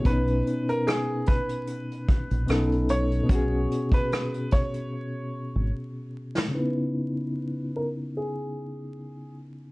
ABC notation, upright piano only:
X:1
M:4/4
L:1/16
Q:"Swing 16ths" 1/4=74
K:C#m
V:1 name="Upright piano"
B3 ^A G2 B8 c2- | c3 B3 c6 z4 | B6 ^A2 G6 z2 |]